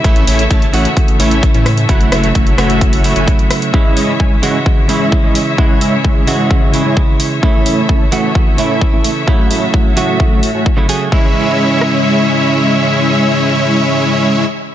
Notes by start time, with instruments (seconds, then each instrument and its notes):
Already playing: string section E4 E5
0.03 sub bass A1, clean electric guitar C#3 E3 A3 E4, supersaw synth A3 C#4 E4 C#5 E5, string section A3 C#5, kick, closed hi-hat
0.16 closed hi-hat
0.27 sub bass A1, supersaw synth A3 C#4 E4 C#5 E5, open hi-hat
0.39 closed hi-hat
0.51 sub bass A1, supersaw synth A3 C#4 E4 C#5 A5, kick, closed hi-hat
0.62 closed hi-hat
0.73 sub bass A1, clean electric guitar C#3 E3 A3 F#4, supersaw synth A3 C#4 E4 C#5 F#5, open hi-hat
0.85 closed hi-hat
0.97 kick, closed hi-hat
1.08 closed hi-hat
1.19 sub bass A1, clean electric guitar C#3 E3 A3 E4, supersaw synth A3 C#4 E4 C#5 E5, open hi-hat
1.31 closed hi-hat
1.43 kick, closed hi-hat
1.54 sub bass A2, supersaw synth A3 C#4 E4 C#5 E5, closed hi-hat
1.66 cross-stick, open hi-hat
1.77 closed hi-hat
1.88 sub bass F#1, clean electric guitar C#3 F#3 A3 E4, supersaw synth A3 E4 F#4 C#5 F#5, string section F#4, kick, closed hi-hat
2.01 closed hi-hat
2.12 sub bass F#1, supersaw synth A3 E4 F#4 C#5 E5, cross-stick, open hi-hat
2.24 closed hi-hat
2.35 sub bass F#1, supersaw synth A3 E4 F#4 C#5 E5, kick, closed hi-hat
2.47 closed hi-hat
2.58 sub bass F#1, clean electric guitar C#3 F#3 A3 F#4, supersaw synth A3 E4 F#4 C#5 E5, cross-stick, open hi-hat
2.70 closed hi-hat
2.81 kick, closed hi-hat
2.93 open hi-hat
3.03 clean electric guitar C#3 F#3 A3 E4, open hi-hat
3.16 sub bass F#1, supersaw synth A3 E4 F#4 C#5 G#5, closed hi-hat
3.28 kick, closed hi-hat
3.39 closed hi-hat
3.51 cross-stick, open hi-hat
3.62 closed hi-hat
3.72 clean electric guitar C#3 E3 G#3 E4, supersaw synth G#3 C#4 E4 C#5 E5, string section G#3 E4, kick
3.97 supersaw synth G#3 C#4 E4 C#5 D#5, open hi-hat
4.20 supersaw synth G#3 C#4 E4 C#5 G#5, kick
4.42 clean electric guitar C#3 E3 G#3 F#4, supersaw synth G#3 C#4 E4 C#5 F#5, open hi-hat
4.66 kick
4.88 clean electric guitar C#3 E3 G#3 E4, supersaw synth G#3 C#4 E4 C#5 E5, open hi-hat
5.12 kick
5.24 supersaw synth G#3 C#4 E4 C#5 D#5
5.35 open hi-hat
5.57 clean electric guitar C#3 E3 G#3 E4, supersaw synth G#3 C#4 E4 C#5 F#5, kick
5.81 supersaw synth G#3 C#4 E4 C#5 E5, open hi-hat
6.04 supersaw synth G#3 C#4 E4 C#5 E5, kick
6.27 clean electric guitar C#3 E3 G#3 F#4, supersaw synth G#3 C#4 E4 C#5 E5, open hi-hat
6.51 kick
6.72 clean electric guitar C#3 E3 G#3 E4, open hi-hat
6.85 supersaw synth G#3 C#4 E4 C#5 G#5
6.97 kick
7.20 open hi-hat
7.42 clean electric guitar C#3 E3 A3 E4, supersaw synth A3 C#4 E4 C#5 E5, string section A3 E4 E5, kick
7.66 supersaw synth A3 C#4 E4 C#5 E5, open hi-hat
7.89 supersaw synth A3 C#4 E4 C#5 A5, kick
8.12 clean electric guitar C#3 E3 A3 F#4, supersaw synth A3 C#4 E4 C#5 F#5, open hi-hat
8.35 kick
8.57 clean electric guitar C#3 E3 A3 E4, supersaw synth A3 C#4 E4 C#5 E5, open hi-hat
8.81 kick
8.93 supersaw synth A3 C#4 E4 C#5 E5
9.04 open hi-hat
9.26 clean electric guitar C#3 F#3 A3 E4, string section A3 F#4, supersaw synth A3 E4 F#4 C#5 F#5, kick
9.51 supersaw synth A3 E4 F#4 C#5 E5, open hi-hat
9.74 supersaw synth A3 E4 F#4 C#5 E5, kick
9.96 clean electric guitar C#3 F#3 A3 F#4, supersaw synth A3 E4 F#4 C#5 E5, open hi-hat
10.20 kick
10.43 open hi-hat
10.54 supersaw synth A3 E4 F#4 C#5 G#5
10.66 kick
10.77 clean electric guitar C#3 F#3 A3 E4
10.88 clean electric guitar C#3 F#3 A3 G#4, open hi-hat
11.10 clean electric guitar C#3 E3 G#3 E4, supersaw synth G#3 C#4 E4 C#5 E5, string section G#3 E4 C#5 E5, kick
11.81 cross-stick